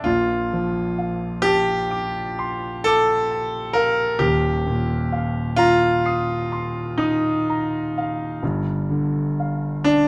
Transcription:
grand piano
0.04 A#1 A#2 F4
0.53 F3
0.99 F5
1.42 G4 A5
1.91 D6
2.39 C6
2.84 A4 D6
3.31 A5
3.73 A#4 F5
4.19 D#1 D#2 G4
4.67 A#2
5.12 F5
5.57 F4 A#5
6.06 D#6 C7
6.52 C6
6.98 D#4 D#6
7.50 A#5
7.98 F5
8.43 G1 G2
8.90 D3
9.40 F5
9.84 D4 A5

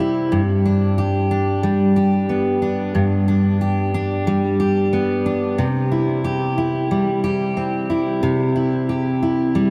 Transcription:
steel-string acoustic guitar
Already playing: C3 G3 C4 G4
0.00 E4
0.32 G2
0.66 D4
0.98 G4
1.31 D4
1.63 G3
1.96 G4
2.29 B3
2.62 D4
2.95 G2
3.28 D4
3.61 G4
3.94 D4
4.27 G3
4.60 G4
4.93 B3
5.26 D4
5.58 C3
5.92 E4
6.24 G4
6.58 E4
6.91 G3
7.24 G4
7.57 C4
7.90 E4
8.23 C3
8.56 E4
8.89 G4
9.23 E4
9.55 G3

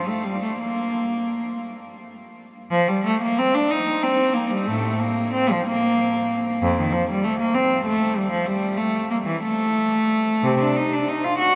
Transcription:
cello
0.07 A3
0.24 G3
0.41 A3
0.58 A#3
2.71 F3
2.88 G3
3.05 A3
3.22 A#3
3.38 C4
3.54 D4
3.70 D#4
4.02 C4
4.34 A#3
4.50 G3
4.66 A2 A3
4.99 A#3
5.33 C4
5.51 F3
5.67 A#3
6.62 F2
6.78 D#3
6.92 F3
7.09 G3
7.24 A3
7.39 A#3
7.54 C4
7.85 A3
8.16 G3
8.31 F3
8.46 G3
8.77 A3
9.10 A#3
9.26 E3
9.42 A3
10.43 C3
10.60 D4
10.77 D#4
10.93 D4
11.08 D#4
11.24 F4
11.38 F#4

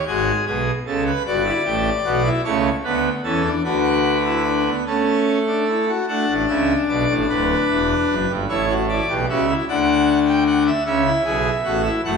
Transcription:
pipe organ
0.07 G#1 G#2 F#4 G#4
0.47 B1 B2 G#4
0.86 C#2 C#3 A4
1.06 B4
1.26 G1 G2 F#4 D5
1.45 E4
1.65 A1 A2 G4
2.05 B1 B2 F#4
2.24 E4
2.45 C#2 C#3 A3 C#5
2.84 D2 D3 B3 B4
3.24 E2 E3 C#4 A4
3.45 D4
3.64 D2 D3 F#4 B4
4.25 E4
4.45 D4
4.66 B3
4.86 A3 C#4 A4
5.47 D4
5.68 E4
5.88 F#4
6.08 A3 D4 F#5
6.28 A1 A2
6.48 C#2 C#3 E5
6.89 B1 B2 D5
7.08 A1 A2
7.29 D1 D2 B4
7.69 E1 E2
8.09 F#1 F#2
8.29 G1 G2
8.49 A1 A2 E4 C#5
8.69 F#4
8.89 E4 D5
9.09 B1 B2 G4
9.29 C#2 C#3 F#4 E5
9.48 E4
9.68 D2 D3 D4 F#5
10.27 G5
10.47 F#5
10.66 E5
10.86 C#2 C#3 C#4 E5
11.06 E4
11.25 B1 B2 G#4
11.64 A1 A2 F#4
11.85 E4
12.05 F#1 F#2 A3 F#5

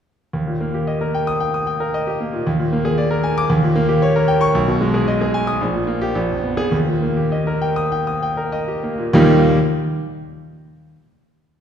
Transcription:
grand piano
0.33 D#2
0.47 A#2
0.61 A#3
0.74 G4
0.87 D#5
1.01 A#4
1.14 G5
1.27 D#6
1.40 G5
1.54 D#6
1.67 G5
1.80 A#4
1.94 D#5
2.07 G4
2.20 A#3
2.33 A#2
2.47 D#2
2.59 A#2
2.73 A#3
2.85 G#4
2.98 D5
3.11 A#4
3.24 G#5
3.38 D6
3.50 D#2
3.63 A#2
3.76 A#3
3.89 G4
4.02 C#5
4.16 A#4
4.28 G5
4.41 C#6
4.55 B1
4.68 B2
4.81 G#3
4.94 G#4
5.08 D#5
5.21 G#4
5.34 G#5
5.47 D#6
5.61 A#1
5.74 A#2
5.87 A#3
6.01 G4
6.15 A#1
6.30 F2
6.44 B3
6.57 G#4
6.72 D#2
6.88 A#2
7.02 A#3
7.17 G4
7.32 D#5
7.47 A#4
7.62 G5
7.76 D#6
7.92 G5
8.07 D#6
8.23 G5
8.37 A#4
8.52 D#5
8.68 G4
8.83 A#3
8.98 A#2
9.13 D#2 A#2 G3 A#3 D#4 G4

